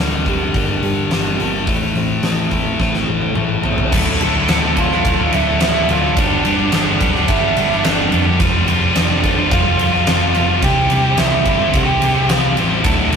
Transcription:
Already playing: picked electric bass D1, steel-string acoustic guitar G2 A#3
0.00 distorted electric guitar G2 D3 G3, steel-string acoustic guitar D4
0.26 distorted electric guitar G2 D3 G3, steel-string acoustic guitar G3, kick, open hi-hat
0.54 picked electric bass G1, distorted electric guitar G2 D3 G3, steel-string acoustic guitar A#3, kick, open hi-hat
0.82 picked electric bass G1, steel-string acoustic guitar G4, open hi-hat
1.11 picked electric bass G1, distorted electric guitar G2 D3 G3, steel-string acoustic guitar D4, snare, open hi-hat
1.39 picked electric bass G1, distorted electric guitar G2 D3 G3, steel-string acoustic guitar A#3, open hi-hat
1.67 picked electric bass A1, steel-string acoustic guitar A2, distorted electric guitar A2 E3 A3, kick, open hi-hat
1.95 picked electric bass A1, steel-string acoustic guitar C4, open hi-hat
2.23 picked electric bass A1, distorted electric guitar A2 E3 A3, steel-string acoustic guitar E4, snare, open hi-hat
2.51 distorted electric guitar A2 E3 A3, steel-string acoustic guitar A3, kick, open hi-hat
2.80 picked electric bass A1, distorted electric guitar A2 E3 A3, steel-string acoustic guitar C4, kick, snare
2.94 snare
3.08 picked electric bass A1, steel-string acoustic guitar A4
3.21 high tom
3.35 picked electric bass A1, distorted electric guitar A2 E3 A3, steel-string acoustic guitar E4, mid tom
3.64 distorted electric guitar A2 E3 A3, steel-string acoustic guitar C4, floor tom
3.78 floor tom
3.91 picked electric bass D1, distorted electric guitar D2 A2 D3 A3 E4, kick, crash
4.20 picked electric bass D1, distorted electric guitar A2 D3 A3 E4, lead electric guitar A4 A5, ride
4.34 distorted electric guitar D3 A3 E4
4.48 picked electric bass D1, distorted electric guitar D2 A2 D3 A3 E4, snare, ride
4.62 distorted electric guitar D3 A3 E4
4.76 distorted electric guitar A2 D3 A3 E4, lead electric guitar F4 F5, kick, ride
4.91 distorted electric guitar D3 A3 E4, snare
5.05 picked electric bass D1, kick, ride
5.19 distorted electric guitar D3 A3 E4
5.32 picked electric bass D1, overdriven electric guitar A2 D3 A3 E4, lead electric guitar E4 E5, ride
5.47 distorted electric guitar D3 A3 E4
5.60 picked electric bass D1, distorted electric guitar D2 A2 D3 A3 E4, lead electric guitar E4 E5, snare, ride
5.88 picked electric bass D1, distorted electric guitar A2 D3 A3 E4, lead electric guitar F4 F5, ride
6.02 distorted electric guitar D3 A3 E4
6.14 picked electric bass G1, distorted electric guitar G2 D3 G3 B3 D4 G4, lead electric guitar D4 D5, kick, ride
6.43 picked electric bass G1, distorted electric guitar G3 B3 D4 G4, ride
6.57 distorted electric guitar G3 B3 D4 G4
6.70 picked electric bass G1, distorted electric guitar G2 D3 G3 B3 D4 G4, snare, ride
6.84 distorted electric guitar G3 B3 D4 G4
6.98 picked electric bass D1, distorted electric guitar G3 B3 D4 G4, lead electric guitar D4 D5, kick, ride
7.12 distorted electric guitar G3 B3 D4 G4, snare
7.27 picked electric bass G1, lead electric guitar E4 E5, kick, ride
7.40 distorted electric guitar G3 B3 D4 G4
7.55 picked electric bass G1, overdriven electric guitar G3 B3 D4 G4, ride
7.68 distorted electric guitar G3 B3 D4 G4, snare
7.81 distorted electric guitar G2 D3 G3 B3 D4 G4, lead electric guitar D4 D5, snare, ride
7.86 picked electric bass G1
8.10 picked electric bass F2, distorted electric guitar G3 B3 D4 G4, ride
8.24 distorted electric guitar G3 B3 D4 G4
8.38 picked electric bass F1, distorted electric guitar F2 C3 F3 G3 C4 F4, kick, ride
8.66 picked electric bass F1, distorted electric guitar F3 G3 C4 F4, ride
8.80 distorted electric guitar F3 G3 C4 F4
8.94 picked electric bass F1, distorted electric guitar F2 C3 F3 G3 C4 F4, lead electric guitar D4 D5, snare, ride
9.08 distorted electric guitar F3 G3 C4 F4
9.21 distorted electric guitar F3 G3 C4 F4, kick, ride
9.36 distorted electric guitar F3 G3 C4 F4
9.51 picked electric bass F1, lead electric guitar F4 F5, kick, ride
9.64 distorted electric guitar F3 G3 C4 F4
9.79 picked electric bass F1, overdriven electric guitar F3 G3 C4 F4, ride
9.91 distorted electric guitar F3 G3 C4 F4, snare
10.06 picked electric bass F1, distorted electric guitar F2 C3 F3 G3 C4 F4, snare, ride
10.34 picked electric bass F1, distorted electric guitar F3 G3 C4 F4, ride
10.48 distorted electric guitar F3 G3 C4 F4
10.62 picked electric bass C2, distorted electric guitar C3 G3 C4 E4 G4 C5, lead electric guitar G4 G5, kick, ride
10.89 picked electric bass C2, distorted electric guitar C4 E4 G4 C5, ride
11.04 distorted electric guitar C4 E4 G4 C5
11.17 picked electric bass C2, distorted electric guitar C3 G3 C4 E4 G4 C5, lead electric guitar E4 E5, snare, ride
11.31 distorted electric guitar C4 E4 G4 C5
11.45 picked electric bass G1, distorted electric guitar C4 E4 G4 C5, kick, ride
11.58 distorted electric guitar C4 E4 G4 C5
11.73 picked electric bass C2, lead electric guitar G4 G5, kick, ride
11.86 distorted electric guitar C4 E4 G4 C5
12.01 picked electric bass C2, overdriven electric guitar C4 E4 G4 C5, ride
12.14 distorted electric guitar C4 E4 G4 C5
12.28 picked electric bass C2, distorted electric guitar C3 G3 C4 E4 G4 C5, snare, ride
12.33 lead electric guitar F5
12.55 picked electric bass A1, distorted electric guitar C4 E4 G4 C5, ride
12.69 distorted electric guitar C4 E4 G4 C5
12.83 picked electric bass D1, distorted electric guitar D2 A2 D3 A3 E4, kick, ride
13.11 picked electric bass D1, distorted electric guitar A2 D3, ride

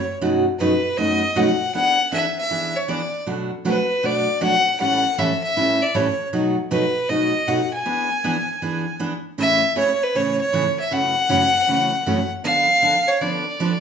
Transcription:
Already playing: fiddle C#5
0.21 steel-string acoustic guitar F#2 B2 F#3 A3 D#4 F#4
0.59 steel-string acoustic guitar F#2 B2 F#3 A3 D#4 F#4, fiddle B4
0.97 steel-string acoustic guitar F#2 B2 F#3 A3 D#4 F#4, fiddle D#5
1.35 steel-string acoustic guitar F#2 B2 F#3 A3 D#4 F#4, fiddle F#5
1.74 steel-string acoustic guitar E3 B3 D4 G#4, fiddle F#5
2.12 steel-string acoustic guitar E3 B3 D4 G#4, fiddle E5
2.38 fiddle E5
2.50 steel-string acoustic guitar E3 B3 D4 G#4
2.76 fiddle C#5
2.88 steel-string acoustic guitar E3 B3 D4 G#4, fiddle D5
3.26 steel-string acoustic guitar B2 F#3 A3 D4 F#4
3.65 steel-string acoustic guitar B2 F#3 A3 D4 F#4, fiddle B4
4.03 steel-string acoustic guitar B2 F#3 A3 D4 F#4, fiddle D5
4.41 steel-string acoustic guitar B2 F#3 A3 D4 F#4, fiddle F#5
4.79 steel-string acoustic guitar A2 E3 G3 C#4 E4 A4, fiddle F#5
5.18 steel-string acoustic guitar A2 E3 G3 C#4 E4 A4, fiddle E5
5.43 fiddle E5
5.56 steel-string acoustic guitar A2 E3 G3 C#4 E4 A4
5.82 fiddle D5
5.94 steel-string acoustic guitar A2 E3 G3 C#4 E4 A4, fiddle C#5
6.33 steel-string acoustic guitar B2 F#3 A3 D#4 F#4
6.71 steel-string acoustic guitar B2 F#3 A3 D#4 F#4, fiddle B4
7.09 steel-string acoustic guitar B2 F#3 A3 D#4 F#4, fiddle D#5
7.48 steel-string acoustic guitar B2 F#3 A3 D#4 F#4, fiddle F#5
7.73 fiddle G#5
7.86 steel-string acoustic guitar E3 B3 D4 G#4
8.24 steel-string acoustic guitar E3 B3 D4 G#4
8.62 steel-string acoustic guitar E3 B3 D4 G#4
8.99 steel-string acoustic guitar E3 B3 D4 G#4
9.38 steel-string acoustic guitar A2 C#3 E3 A3 C#4 G#4, fiddle E5
9.76 steel-string acoustic guitar A2 C#3 E3 A3 C#4 G#4, fiddle C#5
10.03 fiddle B4
10.15 steel-string acoustic guitar A2 C#3 E3 A3 C#4 G#4, fiddle C#5
10.41 fiddle C#5
10.53 steel-string acoustic guitar A2 C#3 E3 A3 C#4 G#4
10.80 fiddle E5
10.91 steel-string acoustic guitar F#2 C#3 E3 A3 C#4 F#4, fiddle F#5
11.29 steel-string acoustic guitar F#2 C#3 E3 A3 C#4 F#4
11.67 steel-string acoustic guitar F#2 C#3 E3 A3 C#4 F#4
12.06 steel-string acoustic guitar F#2 C#3 E3 A3 C#4 F#4
12.44 steel-string acoustic guitar D3 F3 B3 D4 A4, fiddle F5
12.82 steel-string acoustic guitar D3 F3 B3 D4 A4
13.08 fiddle C#5
13.21 steel-string acoustic guitar D3 F3 B3 D4 A4, fiddle D5
13.60 steel-string acoustic guitar D3 F3 B3 D4 A4

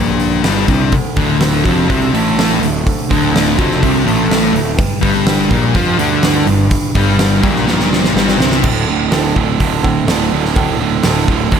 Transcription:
Already playing: picked electric bass A#1, steel-string acoustic guitar G2 D3 G3, distorted electric guitar A#2 A#3
0.19 steel-string acoustic guitar D3, open hi-hat
0.43 picked electric bass G1, distorted electric guitar G2 G3, steel-string acoustic guitar G2, snare, open hi-hat
0.67 picked electric bass C2, distorted electric guitar C3 C4, steel-string acoustic guitar D3, kick, open hi-hat
0.91 steel-string acoustic guitar D2, kick, open hi-hat
1.16 picked electric bass D1, distorted electric guitar D2 D3, kick, open hi-hat
1.39 steel-string acoustic guitar A3, snare, open hi-hat
1.63 picked electric bass F1, distorted electric guitar F2 F3, steel-string acoustic guitar F#4, kick, open hi-hat
1.88 picked electric bass C2, distorted electric guitar C3 C4, steel-string acoustic guitar D3, kick, open hi-hat
2.13 picked electric bass A1, distorted electric guitar A2 A3, open hi-hat
2.37 steel-string acoustic guitar D3, snare, open hi-hat
2.60 picked electric bass D1, distorted electric guitar D2, steel-string acoustic guitar A3, open hi-hat
2.85 steel-string acoustic guitar D2, kick, open hi-hat
3.09 picked electric bass D1, distorted electric guitar D2 D3, kick, open hi-hat
3.33 steel-string acoustic guitar A3, snare, open hi-hat
3.57 picked electric bass F1, distorted electric guitar F2 F3, steel-string acoustic guitar F#4, kick, open hi-hat
3.71 snare
3.81 picked electric bass C2, distorted electric guitar C3 C4, steel-string acoustic guitar D3, kick, open hi-hat
4.06 picked electric bass A1, distorted electric guitar A2 A3, open hi-hat
4.29 steel-string acoustic guitar D3, snare, open hi-hat
4.52 picked electric bass D1, distorted electric guitar D2, steel-string acoustic guitar A3, open hi-hat
4.77 steel-string acoustic guitar G2, kick, open hi-hat
5.01 picked electric bass G1, distorted electric guitar G2 G3, kick, open hi-hat
5.26 steel-string acoustic guitar D3, snare, open hi-hat
5.49 picked electric bass A#1, distorted electric guitar A#2 A#3, steel-string acoustic guitar G3, kick, open hi-hat
5.73 picked electric bass F2, steel-string acoustic guitar G2, distorted electric guitar F3 F4, kick, open hi-hat
5.98 picked electric bass D2, distorted electric guitar D3 D4, open hi-hat
6.22 steel-string acoustic guitar G2, snare, open hi-hat
6.46 picked electric bass G1, distorted electric guitar G2, steel-string acoustic guitar D3, open hi-hat
6.70 steel-string acoustic guitar G2, kick, open hi-hat
6.95 picked electric bass G1, distorted electric guitar G2 G3, kick, open hi-hat
7.19 steel-string acoustic guitar D3, snare, open hi-hat
7.43 picked electric bass A#1, distorted electric guitar A#2 A#3, steel-string acoustic guitar G3, kick, open hi-hat
7.56 snare
7.67 picked electric bass A#1, steel-string acoustic guitar G2, distorted electric guitar A#2 A#3, snare
7.80 snare
7.91 steel-string acoustic guitar D3, snare
8.04 snare
8.15 picked electric bass G1, distorted electric guitar G2 G3, snare
8.28 snare
8.39 picked electric bass C2, distorted electric guitar C3 C4, steel-string acoustic guitar D3, snare
8.51 snare
8.63 picked electric bass D1, distorted electric guitar D2 A2 D3, kick, crash
8.87 picked electric bass D1, distorted electric guitar D2 A2 D3
9.11 picked electric bass D1, distorted electric guitar D2 A2 D3, snare, open hi-hat
9.35 picked electric bass D1, distorted electric guitar D2 A2 D3, kick
9.60 picked electric bass D1, distorted electric guitar D2 A2 D3, kick, open hi-hat
9.83 distorted electric guitar D2 A2 D3, kick
10.07 picked electric bass D1, distorted electric guitar D2 A2 D3, snare, open hi-hat
10.32 picked electric bass D1, distorted electric guitar D2 A2 D3
10.45 snare
10.56 picked electric bass D1, distorted electric guitar D2 A2 D3, kick, open hi-hat
10.79 picked electric bass D1, distorted electric guitar D2 A2 D3
11.03 picked electric bass D1, distorted electric guitar D2 A2 D3, snare, open hi-hat
11.27 picked electric bass D1, distorted electric guitar D2 A2 D3, kick
11.51 picked electric bass D1, distorted electric guitar D2 A2 D3, kick, open hi-hat

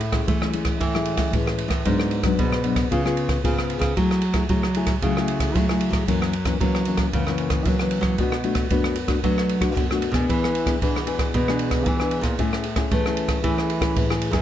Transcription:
Already playing: nylon-string guitar A2
0.01 ride
0.12 nylon-string guitar G#3 C#4 E4, kick, cross-stick, ride
0.27 nylon-string guitar E3 A3, kick, ride
0.41 nylon-string guitar G#3 C#4 E4, cross-stick
0.53 nylon-string guitar G#3 C#4 E4, ride
0.65 kick, cross-stick, ride
0.80 nylon-string guitar A2 E3, kick, ride
0.95 nylon-string guitar G#3 C#4 E4, cross-stick
1.05 ride
1.17 nylon-string guitar G#3 C#4 E4, kick, cross-stick, ride
1.33 nylon-string guitar A2 E3 G#3 C#4 E4, kick, ride
1.47 cross-stick
1.58 ride
1.68 nylon-string guitar A2, kick, cross-stick, ride
1.85 nylon-string guitar G#2 F#3 B3 D4, kick, ride
2.00 cross-stick
2.11 ride
2.23 nylon-string guitar F#3 B3 D4, kick, cross-stick, ride
2.39 nylon-string guitar G#2 B2, kick, ride
2.52 cross-stick
2.64 nylon-string guitar F#3 B3 D4, ride
2.76 kick, cross-stick, ride
2.91 nylon-string guitar C#3 B3 F4 G#4, kick, ride
3.05 nylon-string guitar B3 F4 G#4, cross-stick
3.17 ride
3.29 kick, cross-stick, ride
3.44 nylon-string guitar G#2 C#3 B3 F4 G#4, kick, ride
3.59 cross-stick
3.70 ride
3.79 nylon-string guitar C#3, kick, cross-stick, ride
3.96 nylon-string guitar F#3 A3 E4 G#4, kick, ride
4.11 cross-stick
4.22 ride
4.34 nylon-string guitar A3 E4 G#4, kick, cross-stick, ride
4.49 nylon-string guitar C#3 F#3 A3 E4 G#4, kick, ride
4.63 cross-stick
4.75 nylon-string guitar A3 E4 G#4, ride
4.87 kick, cross-stick, ride
5.02 nylon-string guitar C#3 F#3 A3 E4 G#4, kick, ride
5.17 nylon-string guitar A3 E4 G#4, cross-stick
5.28 ride
5.40 kick, cross-stick, ride
5.55 nylon-string guitar C#3 F#3 A3 E4 G#4, kick, ride
5.69 nylon-string guitar A3 E4 G#4, cross-stick
5.81 ride
5.91 nylon-string guitar F#3, kick, cross-stick, ride
6.07 nylon-string guitar F#2 E3 F#3 A#3 C#4, kick, ride
6.22 cross-stick
6.33 ride
6.45 nylon-string guitar E3 A#3 C#4, kick, cross-stick, ride
6.60 nylon-string guitar C#3 E3 F#3 A#3 C#4, kick, ride
6.75 cross-stick
6.85 nylon-string guitar E3 A#3 C#4, ride
6.97 kick, cross-stick, ride
7.13 nylon-string guitar F#2 C#3 E3 A#3 C#4, kick, ride
7.27 nylon-string guitar E3 A#3 C#4, cross-stick
7.38 ride
7.50 kick, cross-stick, ride
7.65 nylon-string guitar C#3 E3 F#3 A#3 C#4, kick, ride
7.79 nylon-string guitar E3 A#3 C#4, cross-stick
7.91 ride
8.01 nylon-string guitar F#3, kick, cross-stick, ride
8.18 nylon-string guitar B2 A3 D4 F#4, kick, ride
8.32 cross-stick
8.43 nylon-string guitar A3 D4 F#4, ride
8.55 kick, cross-stick, ride
8.70 nylon-string guitar F#2 A3 B3 D4 F#4, kick, ride
8.84 cross-stick
8.96 ride
9.08 nylon-string guitar A3 D4 F#4, kick, cross-stick, ride
9.23 nylon-string guitar B2 F#3 A3 D4 F#4, kick, ride
9.38 cross-stick
9.49 ride
9.60 nylon-string guitar A3 D4 F#4, kick, cross-stick, ride
9.76 nylon-string guitar F#2 B2, kick, ride
9.91 nylon-string guitar A3 D4 F#4, cross-stick
10.02 ride
10.12 nylon-string guitar B2 B3 D4 G#4, kick, cross-stick, ride
10.29 nylon-string guitar E3, kick, ride
10.44 cross-stick
10.55 ride
10.66 nylon-string guitar B3 D4 G#4, kick, cross-stick, ride
10.82 nylon-string guitar B2 E3 B3 D4 G#4, kick, ride
10.96 cross-stick
11.07 nylon-string guitar B3 D4 G#4, ride
11.19 kick, cross-stick, ride
11.34 nylon-string guitar B2 E3, kick, ride
11.48 nylon-string guitar B3 D4 G#4, cross-stick
11.59 ride
11.71 kick, cross-stick, ride
11.86 nylon-string guitar B2 E3 B3 D4 G#4, kick, ride
12.00 nylon-string guitar B3 D4 G#4, cross-stick
12.11 ride
12.21 nylon-string guitar A#2, kick, cross-stick, ride
12.39 nylon-string guitar A2 A3 C#4 E4 G#4, kick, ride
12.53 cross-stick
12.64 ride
12.76 nylon-string guitar C#4 E4 G#4, kick, cross-stick, ride
12.91 nylon-string guitar E3 A3, kick, ride
13.06 nylon-string guitar C#4 E4 G#4, cross-stick
13.17 ride
13.29 kick, cross-stick, ride
13.44 nylon-string guitar E3 A3 C#4 E4 G#4, kick, ride
13.58 cross-stick
13.70 ride
13.81 nylon-string guitar C#4 E4 G#4, kick, cross-stick, ride
13.96 nylon-string guitar A2 E3, kick, ride
14.10 nylon-string guitar C#4 E4 G#4, cross-stick
14.22 ride
14.31 nylon-string guitar F#2 B3 D4 G#4, kick, cross-stick, ride

